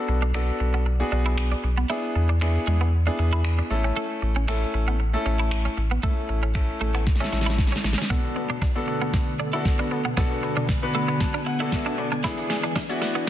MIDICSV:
0, 0, Header, 1, 8, 480
1, 0, Start_track
1, 0, Tempo, 517241
1, 1759, Time_signature, 4, 2, 24, 8
1, 12339, End_track
2, 0, Start_track
2, 0, Title_t, "String machine"
2, 0, Program_c, 0, 50
2, 9439, Note_on_c, 0, 80, 87
2, 12339, Note_off_c, 0, 80, 0
2, 12339, End_track
3, 0, Start_track
3, 0, Title_t, "Grand piano"
3, 0, Program_c, 1, 0
3, 0, Note_on_c, 1, 59, 83
3, 0, Note_on_c, 1, 62, 80
3, 0, Note_on_c, 1, 66, 77
3, 0, Note_on_c, 1, 69, 95
3, 190, Note_off_c, 1, 59, 0
3, 191, Note_off_c, 1, 62, 0
3, 192, Note_off_c, 1, 66, 0
3, 193, Note_off_c, 1, 69, 0
3, 318, Note_on_c, 1, 59, 89
3, 319, Note_on_c, 1, 62, 87
3, 321, Note_on_c, 1, 66, 85
3, 322, Note_on_c, 1, 69, 101
3, 753, Note_off_c, 1, 59, 0
3, 754, Note_off_c, 1, 62, 0
3, 755, Note_off_c, 1, 66, 0
3, 756, Note_off_c, 1, 69, 0
3, 925, Note_on_c, 1, 59, 91
3, 926, Note_on_c, 1, 62, 85
3, 928, Note_on_c, 1, 66, 85
3, 930, Note_on_c, 1, 68, 104
3, 1523, Note_off_c, 1, 59, 0
3, 1524, Note_off_c, 1, 62, 0
3, 1525, Note_off_c, 1, 66, 0
3, 1526, Note_off_c, 1, 68, 0
3, 1758, Note_on_c, 1, 59, 88
3, 1759, Note_on_c, 1, 62, 82
3, 1761, Note_on_c, 1, 64, 80
3, 1762, Note_on_c, 1, 68, 95
3, 2110, Note_off_c, 1, 59, 0
3, 2111, Note_off_c, 1, 62, 0
3, 2112, Note_off_c, 1, 64, 0
3, 2113, Note_off_c, 1, 68, 0
3, 2238, Note_on_c, 1, 59, 93
3, 2239, Note_on_c, 1, 62, 81
3, 2241, Note_on_c, 1, 64, 83
3, 2243, Note_on_c, 1, 68, 100
3, 2674, Note_off_c, 1, 59, 0
3, 2674, Note_off_c, 1, 62, 0
3, 2675, Note_off_c, 1, 64, 0
3, 2676, Note_off_c, 1, 68, 0
3, 2845, Note_on_c, 1, 59, 92
3, 2846, Note_on_c, 1, 62, 84
3, 2848, Note_on_c, 1, 64, 87
3, 2850, Note_on_c, 1, 68, 104
3, 3426, Note_off_c, 1, 64, 0
3, 3437, Note_on_c, 1, 57, 96
3, 3439, Note_off_c, 1, 59, 0
3, 3439, Note_off_c, 1, 62, 0
3, 3439, Note_on_c, 1, 61, 88
3, 3440, Note_on_c, 1, 64, 86
3, 3441, Note_off_c, 1, 68, 0
3, 3442, Note_on_c, 1, 69, 110
3, 4020, Note_off_c, 1, 57, 0
3, 4021, Note_off_c, 1, 61, 0
3, 4022, Note_off_c, 1, 64, 0
3, 4022, Note_off_c, 1, 69, 0
3, 4157, Note_on_c, 1, 57, 90
3, 4158, Note_on_c, 1, 61, 85
3, 4160, Note_on_c, 1, 64, 85
3, 4162, Note_on_c, 1, 69, 105
3, 4593, Note_off_c, 1, 57, 0
3, 4594, Note_off_c, 1, 61, 0
3, 4595, Note_off_c, 1, 64, 0
3, 4595, Note_off_c, 1, 69, 0
3, 4764, Note_on_c, 1, 57, 96
3, 4766, Note_on_c, 1, 61, 85
3, 4767, Note_on_c, 1, 64, 88
3, 4769, Note_on_c, 1, 69, 105
3, 5363, Note_off_c, 1, 57, 0
3, 5364, Note_off_c, 1, 61, 0
3, 5365, Note_off_c, 1, 64, 0
3, 5366, Note_off_c, 1, 69, 0
3, 5597, Note_on_c, 1, 57, 83
3, 5598, Note_on_c, 1, 61, 80
3, 5600, Note_on_c, 1, 64, 80
3, 5601, Note_on_c, 1, 69, 91
3, 5950, Note_off_c, 1, 57, 0
3, 5951, Note_off_c, 1, 61, 0
3, 5951, Note_off_c, 1, 64, 0
3, 5952, Note_off_c, 1, 69, 0
3, 6077, Note_on_c, 1, 57, 91
3, 6078, Note_on_c, 1, 61, 79
3, 6080, Note_on_c, 1, 64, 84
3, 6081, Note_on_c, 1, 69, 102
3, 6513, Note_off_c, 1, 57, 0
3, 6514, Note_off_c, 1, 61, 0
3, 6514, Note_off_c, 1, 64, 0
3, 6515, Note_off_c, 1, 69, 0
3, 6684, Note_on_c, 1, 57, 93
3, 6685, Note_on_c, 1, 61, 86
3, 6687, Note_on_c, 1, 64, 88
3, 6688, Note_on_c, 1, 69, 102
3, 7283, Note_off_c, 1, 57, 0
3, 7284, Note_off_c, 1, 61, 0
3, 7284, Note_off_c, 1, 64, 0
3, 7285, Note_off_c, 1, 69, 0
3, 7516, Note_on_c, 1, 59, 80
3, 7517, Note_on_c, 1, 62, 77
3, 7519, Note_on_c, 1, 66, 74
3, 7521, Note_on_c, 1, 69, 90
3, 7953, Note_off_c, 1, 59, 0
3, 7953, Note_off_c, 1, 62, 0
3, 7954, Note_off_c, 1, 66, 0
3, 7955, Note_off_c, 1, 69, 0
3, 8124, Note_on_c, 1, 59, 86
3, 8125, Note_on_c, 1, 62, 79
3, 8127, Note_on_c, 1, 66, 80
3, 8129, Note_on_c, 1, 69, 95
3, 8641, Note_off_c, 1, 59, 0
3, 8642, Note_off_c, 1, 62, 0
3, 8643, Note_off_c, 1, 66, 0
3, 8644, Note_off_c, 1, 69, 0
3, 8844, Note_on_c, 1, 59, 86
3, 8845, Note_on_c, 1, 62, 83
3, 8847, Note_on_c, 1, 66, 82
3, 8848, Note_on_c, 1, 69, 93
3, 9274, Note_off_c, 1, 59, 0
3, 9275, Note_off_c, 1, 62, 0
3, 9276, Note_off_c, 1, 66, 0
3, 9277, Note_off_c, 1, 69, 0
3, 9437, Note_on_c, 1, 59, 86
3, 9438, Note_on_c, 1, 62, 75
3, 9440, Note_on_c, 1, 66, 79
3, 9442, Note_on_c, 1, 69, 98
3, 9873, Note_off_c, 1, 59, 0
3, 9874, Note_off_c, 1, 62, 0
3, 9875, Note_off_c, 1, 66, 0
3, 9876, Note_off_c, 1, 69, 0
3, 10044, Note_on_c, 1, 59, 92
3, 10046, Note_on_c, 1, 62, 80
3, 10048, Note_on_c, 1, 66, 80
3, 10049, Note_on_c, 1, 71, 95
3, 10160, Note_on_c, 1, 83, 74
3, 10383, Note_off_c, 1, 83, 0
3, 10400, Note_on_c, 1, 81, 78
3, 10562, Note_off_c, 1, 59, 0
3, 10562, Note_off_c, 1, 62, 0
3, 10563, Note_off_c, 1, 66, 0
3, 10564, Note_off_c, 1, 71, 0
3, 10623, Note_off_c, 1, 81, 0
3, 10640, Note_on_c, 1, 78, 75
3, 10764, Note_on_c, 1, 59, 90
3, 10765, Note_on_c, 1, 62, 83
3, 10767, Note_on_c, 1, 66, 82
3, 10768, Note_on_c, 1, 69, 103
3, 10863, Note_off_c, 1, 78, 0
3, 10879, Note_on_c, 1, 76, 76
3, 11103, Note_off_c, 1, 76, 0
3, 11119, Note_on_c, 1, 74, 75
3, 11194, Note_off_c, 1, 59, 0
3, 11195, Note_off_c, 1, 62, 0
3, 11196, Note_off_c, 1, 66, 0
3, 11197, Note_off_c, 1, 69, 0
3, 11342, Note_off_c, 1, 74, 0
3, 11357, Note_on_c, 1, 59, 89
3, 11358, Note_on_c, 1, 62, 77
3, 11360, Note_on_c, 1, 64, 84
3, 11361, Note_on_c, 1, 68, 93
3, 11793, Note_off_c, 1, 59, 0
3, 11794, Note_off_c, 1, 62, 0
3, 11794, Note_off_c, 1, 64, 0
3, 11795, Note_off_c, 1, 68, 0
3, 11964, Note_on_c, 1, 59, 91
3, 11966, Note_on_c, 1, 62, 86
3, 11967, Note_on_c, 1, 64, 85
3, 11969, Note_on_c, 1, 66, 96
3, 12339, Note_off_c, 1, 59, 0
3, 12339, Note_off_c, 1, 62, 0
3, 12339, Note_off_c, 1, 64, 0
3, 12339, Note_off_c, 1, 66, 0
3, 12339, End_track
4, 0, Start_track
4, 0, Title_t, "Clean electric guitar"
4, 0, Program_c, 2, 27
4, 206, Note_on_c, 2, 62, 77
4, 278, Note_off_c, 2, 62, 0
4, 319, Note_on_c, 2, 62, 72
4, 400, Note_off_c, 2, 62, 0
4, 687, Note_on_c, 2, 59, 70
4, 759, Note_off_c, 2, 59, 0
4, 1040, Note_on_c, 2, 62, 65
4, 1120, Note_off_c, 2, 62, 0
4, 1167, Note_on_c, 2, 64, 67
4, 1238, Note_off_c, 2, 64, 0
4, 1407, Note_on_c, 2, 62, 63
4, 1478, Note_off_c, 2, 62, 0
4, 1647, Note_on_c, 2, 59, 77
4, 1718, Note_off_c, 2, 59, 0
4, 1760, Note_on_c, 2, 64, 98
4, 1841, Note_off_c, 2, 64, 0
4, 2128, Note_on_c, 2, 62, 70
4, 2199, Note_off_c, 2, 62, 0
4, 2480, Note_on_c, 2, 56, 73
4, 2561, Note_off_c, 2, 56, 0
4, 2607, Note_on_c, 2, 59, 76
4, 2679, Note_off_c, 2, 59, 0
4, 2848, Note_on_c, 2, 62, 79
4, 2919, Note_off_c, 2, 62, 0
4, 3087, Note_on_c, 2, 64, 75
4, 3159, Note_off_c, 2, 64, 0
4, 3327, Note_on_c, 2, 62, 71
4, 3399, Note_off_c, 2, 62, 0
4, 3567, Note_on_c, 2, 61, 76
4, 3638, Note_off_c, 2, 61, 0
4, 3680, Note_on_c, 2, 57, 87
4, 3760, Note_off_c, 2, 57, 0
4, 4046, Note_on_c, 2, 61, 81
4, 4118, Note_off_c, 2, 61, 0
4, 4159, Note_on_c, 2, 61, 74
4, 4240, Note_off_c, 2, 61, 0
4, 4527, Note_on_c, 2, 59, 74
4, 4598, Note_off_c, 2, 59, 0
4, 4879, Note_on_c, 2, 61, 68
4, 4960, Note_off_c, 2, 61, 0
4, 5006, Note_on_c, 2, 64, 67
4, 5078, Note_off_c, 2, 64, 0
4, 5246, Note_on_c, 2, 61, 64
4, 5318, Note_off_c, 2, 61, 0
4, 5486, Note_on_c, 2, 59, 74
4, 5558, Note_off_c, 2, 59, 0
4, 5599, Note_on_c, 2, 57, 95
4, 5680, Note_off_c, 2, 57, 0
4, 5966, Note_on_c, 2, 61, 68
4, 6038, Note_off_c, 2, 61, 0
4, 6319, Note_on_c, 2, 57, 74
4, 6400, Note_off_c, 2, 57, 0
4, 6446, Note_on_c, 2, 59, 81
4, 6518, Note_off_c, 2, 59, 0
4, 6686, Note_on_c, 2, 61, 78
4, 6758, Note_off_c, 2, 61, 0
4, 6926, Note_on_c, 2, 64, 73
4, 6998, Note_off_c, 2, 64, 0
4, 7166, Note_on_c, 2, 61, 63
4, 7238, Note_off_c, 2, 61, 0
4, 7406, Note_on_c, 2, 61, 76
4, 7478, Note_off_c, 2, 61, 0
4, 7519, Note_on_c, 2, 59, 86
4, 7600, Note_off_c, 2, 59, 0
4, 7886, Note_on_c, 2, 62, 76
4, 7958, Note_off_c, 2, 62, 0
4, 7999, Note_on_c, 2, 62, 73
4, 8080, Note_off_c, 2, 62, 0
4, 8366, Note_on_c, 2, 59, 69
4, 8438, Note_off_c, 2, 59, 0
4, 8719, Note_on_c, 2, 62, 67
4, 8800, Note_off_c, 2, 62, 0
4, 8846, Note_on_c, 2, 64, 71
4, 8918, Note_off_c, 2, 64, 0
4, 9087, Note_on_c, 2, 62, 63
4, 9159, Note_off_c, 2, 62, 0
4, 9327, Note_on_c, 2, 59, 76
4, 9398, Note_off_c, 2, 59, 0
4, 9440, Note_on_c, 2, 59, 101
4, 9521, Note_off_c, 2, 59, 0
4, 9807, Note_on_c, 2, 62, 72
4, 9878, Note_off_c, 2, 62, 0
4, 10159, Note_on_c, 2, 57, 73
4, 10240, Note_off_c, 2, 57, 0
4, 10286, Note_on_c, 2, 59, 79
4, 10358, Note_off_c, 2, 59, 0
4, 10526, Note_on_c, 2, 62, 78
4, 10598, Note_off_c, 2, 62, 0
4, 10767, Note_on_c, 2, 64, 77
4, 10838, Note_off_c, 2, 64, 0
4, 11006, Note_on_c, 2, 62, 71
4, 11078, Note_off_c, 2, 62, 0
4, 11246, Note_on_c, 2, 62, 77
4, 11318, Note_off_c, 2, 62, 0
4, 11359, Note_on_c, 2, 64, 89
4, 11440, Note_off_c, 2, 64, 0
4, 11726, Note_on_c, 2, 62, 80
4, 11798, Note_off_c, 2, 62, 0
4, 11839, Note_on_c, 2, 62, 77
4, 11920, Note_off_c, 2, 62, 0
4, 12206, Note_on_c, 2, 59, 77
4, 12278, Note_off_c, 2, 59, 0
4, 12339, End_track
5, 0, Start_track
5, 0, Title_t, "Synth arpeggio sound"
5, 0, Program_c, 3, 84
5, 7520, Note_on_c, 3, 47, 94
5, 7588, Note_off_c, 3, 47, 0
5, 7647, Note_on_c, 3, 50, 73
5, 7707, Note_off_c, 3, 50, 0
5, 7760, Note_on_c, 3, 59, 84
5, 7828, Note_off_c, 3, 59, 0
5, 7886, Note_on_c, 3, 47, 66
5, 7947, Note_off_c, 3, 47, 0
5, 7999, Note_on_c, 3, 47, 76
5, 8067, Note_off_c, 3, 47, 0
5, 8127, Note_on_c, 3, 59, 77
5, 8187, Note_off_c, 3, 59, 0
5, 8847, Note_on_c, 3, 47, 69
5, 8907, Note_off_c, 3, 47, 0
5, 9087, Note_on_c, 3, 59, 81
5, 9147, Note_off_c, 3, 59, 0
5, 9200, Note_on_c, 3, 59, 82
5, 9268, Note_off_c, 3, 59, 0
5, 9327, Note_on_c, 3, 47, 75
5, 9387, Note_off_c, 3, 47, 0
5, 9440, Note_on_c, 3, 47, 93
5, 9508, Note_off_c, 3, 47, 0
5, 9567, Note_on_c, 3, 50, 76
5, 9627, Note_off_c, 3, 50, 0
5, 9680, Note_on_c, 3, 59, 85
5, 9748, Note_off_c, 3, 59, 0
5, 9807, Note_on_c, 3, 47, 71
5, 9868, Note_off_c, 3, 47, 0
5, 9920, Note_on_c, 3, 47, 79
5, 9988, Note_off_c, 3, 47, 0
5, 10047, Note_on_c, 3, 59, 75
5, 10108, Note_off_c, 3, 59, 0
5, 10768, Note_on_c, 3, 47, 72
5, 10828, Note_off_c, 3, 47, 0
5, 11007, Note_on_c, 3, 59, 78
5, 11067, Note_off_c, 3, 59, 0
5, 11121, Note_on_c, 3, 59, 86
5, 11188, Note_off_c, 3, 59, 0
5, 11248, Note_on_c, 3, 47, 75
5, 11308, Note_off_c, 3, 47, 0
5, 11360, Note_on_c, 3, 52, 94
5, 11428, Note_off_c, 3, 52, 0
5, 11488, Note_on_c, 3, 62, 72
5, 11548, Note_off_c, 3, 62, 0
5, 11600, Note_on_c, 3, 68, 85
5, 11668, Note_off_c, 3, 68, 0
5, 11727, Note_on_c, 3, 52, 71
5, 11787, Note_off_c, 3, 52, 0
5, 11840, Note_on_c, 3, 52, 80
5, 11908, Note_off_c, 3, 52, 0
5, 11967, Note_on_c, 3, 68, 77
5, 12027, Note_off_c, 3, 68, 0
5, 12339, End_track
6, 0, Start_track
6, 0, Title_t, "Sub bass"
6, 0, Program_c, 4, 38
6, 80, Note_on_c, 4, 35, 89
6, 475, Note_off_c, 4, 35, 0
6, 560, Note_on_c, 4, 35, 93
6, 955, Note_off_c, 4, 35, 0
6, 1040, Note_on_c, 4, 35, 87
6, 1435, Note_off_c, 4, 35, 0
6, 1520, Note_on_c, 4, 35, 89
6, 1717, Note_off_c, 4, 35, 0
6, 2000, Note_on_c, 4, 40, 91
6, 2395, Note_off_c, 4, 40, 0
6, 2480, Note_on_c, 4, 40, 91
6, 2875, Note_off_c, 4, 40, 0
6, 2960, Note_on_c, 4, 40, 89
6, 3355, Note_off_c, 4, 40, 0
6, 3440, Note_on_c, 4, 33, 87
6, 3637, Note_off_c, 4, 33, 0
6, 3920, Note_on_c, 4, 33, 86
6, 4315, Note_off_c, 4, 33, 0
6, 4400, Note_on_c, 4, 33, 92
6, 4795, Note_off_c, 4, 33, 0
6, 4880, Note_on_c, 4, 33, 90
6, 5275, Note_off_c, 4, 33, 0
6, 5359, Note_on_c, 4, 33, 85
6, 5557, Note_off_c, 4, 33, 0
6, 5840, Note_on_c, 4, 33, 95
6, 6235, Note_off_c, 4, 33, 0
6, 6319, Note_on_c, 4, 33, 91
6, 6715, Note_off_c, 4, 33, 0
6, 6799, Note_on_c, 4, 33, 89
6, 7195, Note_off_c, 4, 33, 0
6, 7279, Note_on_c, 4, 33, 89
6, 7384, Note_off_c, 4, 33, 0
6, 12339, End_track
7, 0, Start_track
7, 0, Title_t, "Muted clean electric guitar strokes"
7, 79, Note_on_c, 9, 29, 43
7, 172, Note_off_c, 9, 29, 0
7, 559, Note_on_c, 9, 29, 44
7, 652, Note_off_c, 9, 29, 0
7, 800, Note_on_c, 9, 29, 44
7, 892, Note_off_c, 9, 29, 0
7, 1520, Note_on_c, 9, 29, 42
7, 1612, Note_off_c, 9, 29, 0
7, 2001, Note_on_c, 9, 29, 43
7, 2094, Note_off_c, 9, 29, 0
7, 2240, Note_on_c, 9, 29, 42
7, 2333, Note_off_c, 9, 29, 0
7, 2960, Note_on_c, 9, 29, 43
7, 3053, Note_off_c, 9, 29, 0
7, 3440, Note_on_c, 9, 29, 43
7, 3533, Note_off_c, 9, 29, 0
7, 3920, Note_on_c, 9, 29, 44
7, 4012, Note_off_c, 9, 29, 0
7, 4399, Note_on_c, 9, 29, 44
7, 4492, Note_off_c, 9, 29, 0
7, 4639, Note_on_c, 9, 29, 44
7, 4732, Note_off_c, 9, 29, 0
7, 5359, Note_on_c, 9, 29, 45
7, 5452, Note_off_c, 9, 29, 0
7, 5839, Note_on_c, 9, 29, 45
7, 5932, Note_off_c, 9, 29, 0
7, 6079, Note_on_c, 9, 29, 44
7, 6171, Note_off_c, 9, 29, 0
7, 6799, Note_on_c, 9, 29, 41
7, 6892, Note_off_c, 9, 29, 0
7, 7279, Note_on_c, 9, 29, 43
7, 7372, Note_off_c, 9, 29, 0
7, 7759, Note_on_c, 9, 29, 42
7, 7852, Note_off_c, 9, 29, 0
7, 8239, Note_on_c, 9, 29, 44
7, 8332, Note_off_c, 9, 29, 0
7, 8479, Note_on_c, 9, 29, 44
7, 8572, Note_off_c, 9, 29, 0
7, 9200, Note_on_c, 9, 29, 44
7, 9292, Note_off_c, 9, 29, 0
7, 9680, Note_on_c, 9, 29, 43
7, 9772, Note_off_c, 9, 29, 0
7, 9919, Note_on_c, 9, 29, 43
7, 10012, Note_off_c, 9, 29, 0
7, 10639, Note_on_c, 9, 29, 44
7, 10732, Note_off_c, 9, 29, 0
7, 11119, Note_on_c, 9, 29, 44
7, 11212, Note_off_c, 9, 29, 0
7, 11599, Note_on_c, 9, 29, 46
7, 11692, Note_off_c, 9, 29, 0
7, 12079, Note_on_c, 9, 29, 44
7, 12172, Note_off_c, 9, 29, 0
7, 12339, End_track
8, 0, Start_track
8, 0, Title_t, "Drums"
8, 319, Note_on_c, 9, 26, 103
8, 412, Note_off_c, 9, 26, 0
8, 1277, Note_on_c, 9, 26, 113
8, 1370, Note_off_c, 9, 26, 0
8, 2240, Note_on_c, 9, 26, 97
8, 2333, Note_off_c, 9, 26, 0
8, 3197, Note_on_c, 9, 26, 115
8, 3290, Note_off_c, 9, 26, 0
8, 4159, Note_on_c, 9, 26, 97
8, 4252, Note_off_c, 9, 26, 0
8, 5117, Note_on_c, 9, 26, 116
8, 5210, Note_off_c, 9, 26, 0
8, 5600, Note_on_c, 9, 36, 99
8, 5692, Note_off_c, 9, 36, 0
8, 6077, Note_on_c, 9, 36, 109
8, 6079, Note_on_c, 9, 26, 104
8, 6170, Note_off_c, 9, 36, 0
8, 6172, Note_off_c, 9, 26, 0
8, 6447, Note_on_c, 9, 26, 61
8, 6539, Note_off_c, 9, 26, 0
8, 6558, Note_on_c, 9, 36, 120
8, 6559, Note_on_c, 9, 38, 55
8, 6639, Note_off_c, 9, 38, 0
8, 6639, Note_on_c, 9, 38, 50
8, 6651, Note_off_c, 9, 36, 0
8, 6720, Note_off_c, 9, 38, 0
8, 6720, Note_on_c, 9, 38, 63
8, 6799, Note_off_c, 9, 38, 0
8, 6799, Note_on_c, 9, 38, 54
8, 6879, Note_off_c, 9, 38, 0
8, 6879, Note_on_c, 9, 38, 71
8, 6959, Note_off_c, 9, 38, 0
8, 6959, Note_on_c, 9, 38, 63
8, 7038, Note_on_c, 9, 36, 112
8, 7039, Note_off_c, 9, 38, 0
8, 7039, Note_on_c, 9, 38, 82
8, 7120, Note_off_c, 9, 38, 0
8, 7120, Note_on_c, 9, 38, 72
8, 7131, Note_off_c, 9, 36, 0
8, 7199, Note_off_c, 9, 38, 0
8, 7199, Note_on_c, 9, 38, 89
8, 7279, Note_off_c, 9, 38, 0
8, 7279, Note_on_c, 9, 38, 78
8, 7360, Note_off_c, 9, 38, 0
8, 7360, Note_on_c, 9, 38, 97
8, 7439, Note_off_c, 9, 38, 0
8, 7439, Note_on_c, 9, 38, 86
8, 7519, Note_off_c, 9, 38, 0
8, 7519, Note_on_c, 9, 36, 97
8, 7519, Note_on_c, 9, 38, 50
8, 7612, Note_off_c, 9, 36, 0
8, 7612, Note_off_c, 9, 38, 0
8, 7997, Note_on_c, 9, 36, 108
8, 7999, Note_on_c, 9, 38, 56
8, 8090, Note_off_c, 9, 36, 0
8, 8092, Note_off_c, 9, 38, 0
8, 8478, Note_on_c, 9, 36, 112
8, 8479, Note_on_c, 9, 38, 61
8, 8571, Note_off_c, 9, 36, 0
8, 8572, Note_off_c, 9, 38, 0
8, 8958, Note_on_c, 9, 36, 114
8, 8960, Note_on_c, 9, 38, 68
8, 9051, Note_off_c, 9, 36, 0
8, 9052, Note_off_c, 9, 38, 0
8, 9439, Note_on_c, 9, 38, 66
8, 9439, Note_on_c, 9, 82, 81
8, 9440, Note_on_c, 9, 36, 101
8, 9532, Note_off_c, 9, 36, 0
8, 9532, Note_off_c, 9, 38, 0
8, 9532, Note_off_c, 9, 82, 0
8, 9566, Note_on_c, 9, 82, 46
8, 9658, Note_off_c, 9, 82, 0
8, 9680, Note_on_c, 9, 82, 55
8, 9773, Note_off_c, 9, 82, 0
8, 9805, Note_on_c, 9, 82, 72
8, 9898, Note_off_c, 9, 82, 0
8, 9918, Note_on_c, 9, 36, 109
8, 9919, Note_on_c, 9, 38, 69
8, 9919, Note_on_c, 9, 82, 72
8, 10010, Note_off_c, 9, 36, 0
8, 10012, Note_off_c, 9, 38, 0
8, 10012, Note_off_c, 9, 82, 0
8, 10048, Note_on_c, 9, 82, 61
8, 10140, Note_off_c, 9, 82, 0
8, 10159, Note_on_c, 9, 82, 55
8, 10252, Note_off_c, 9, 82, 0
8, 10288, Note_on_c, 9, 82, 67
8, 10380, Note_off_c, 9, 82, 0
8, 10398, Note_on_c, 9, 36, 123
8, 10399, Note_on_c, 9, 38, 78
8, 10399, Note_on_c, 9, 82, 65
8, 10491, Note_off_c, 9, 36, 0
8, 10492, Note_off_c, 9, 38, 0
8, 10492, Note_off_c, 9, 82, 0
8, 10525, Note_on_c, 9, 82, 51
8, 10618, Note_off_c, 9, 82, 0
8, 10641, Note_on_c, 9, 82, 47
8, 10734, Note_off_c, 9, 82, 0
8, 10768, Note_on_c, 9, 82, 69
8, 10861, Note_off_c, 9, 82, 0
8, 10878, Note_on_c, 9, 36, 112
8, 10878, Note_on_c, 9, 82, 71
8, 10879, Note_on_c, 9, 38, 85
8, 10971, Note_off_c, 9, 36, 0
8, 10971, Note_off_c, 9, 82, 0
8, 10972, Note_off_c, 9, 38, 0
8, 11005, Note_on_c, 9, 82, 57
8, 11097, Note_off_c, 9, 82, 0
8, 11118, Note_on_c, 9, 82, 55
8, 11211, Note_off_c, 9, 82, 0
8, 11246, Note_on_c, 9, 82, 84
8, 11339, Note_off_c, 9, 82, 0
8, 11359, Note_on_c, 9, 42, 84
8, 11359, Note_on_c, 9, 54, 57
8, 11359, Note_on_c, 9, 82, 83
8, 11360, Note_on_c, 9, 36, 107
8, 11360, Note_on_c, 9, 38, 84
8, 11452, Note_off_c, 9, 36, 0
8, 11452, Note_off_c, 9, 38, 0
8, 11452, Note_off_c, 9, 42, 0
8, 11452, Note_off_c, 9, 54, 0
8, 11452, Note_off_c, 9, 82, 0
8, 11485, Note_on_c, 9, 42, 49
8, 11485, Note_on_c, 9, 82, 49
8, 11487, Note_on_c, 9, 54, 32
8, 11578, Note_off_c, 9, 42, 0
8, 11578, Note_off_c, 9, 82, 0
8, 11580, Note_off_c, 9, 54, 0
8, 11599, Note_on_c, 9, 38, 85
8, 11600, Note_on_c, 9, 54, 53
8, 11600, Note_on_c, 9, 82, 57
8, 11692, Note_off_c, 9, 38, 0
8, 11692, Note_off_c, 9, 82, 0
8, 11693, Note_off_c, 9, 54, 0
8, 11725, Note_on_c, 9, 42, 53
8, 11725, Note_on_c, 9, 82, 69
8, 11726, Note_on_c, 9, 54, 35
8, 11818, Note_off_c, 9, 42, 0
8, 11818, Note_off_c, 9, 82, 0
8, 11819, Note_off_c, 9, 54, 0
8, 11837, Note_on_c, 9, 36, 112
8, 11838, Note_on_c, 9, 54, 76
8, 11839, Note_on_c, 9, 42, 71
8, 11839, Note_on_c, 9, 82, 73
8, 11840, Note_on_c, 9, 38, 87
8, 11930, Note_off_c, 9, 36, 0
8, 11931, Note_off_c, 9, 54, 0
8, 11932, Note_off_c, 9, 38, 0
8, 11932, Note_off_c, 9, 42, 0
8, 11932, Note_off_c, 9, 82, 0
8, 11968, Note_on_c, 9, 42, 65
8, 11968, Note_on_c, 9, 82, 63
8, 12060, Note_off_c, 9, 42, 0
8, 12060, Note_off_c, 9, 82, 0
8, 12079, Note_on_c, 9, 82, 57
8, 12080, Note_on_c, 9, 38, 90
8, 12080, Note_on_c, 9, 54, 43
8, 12172, Note_off_c, 9, 82, 0
8, 12173, Note_off_c, 9, 38, 0
8, 12173, Note_off_c, 9, 54, 0
8, 12206, Note_on_c, 9, 54, 33
8, 12208, Note_on_c, 9, 42, 49
8, 12208, Note_on_c, 9, 82, 65
8, 12299, Note_off_c, 9, 54, 0
8, 12301, Note_off_c, 9, 42, 0
8, 12301, Note_off_c, 9, 82, 0
8, 12339, End_track
0, 0, End_of_file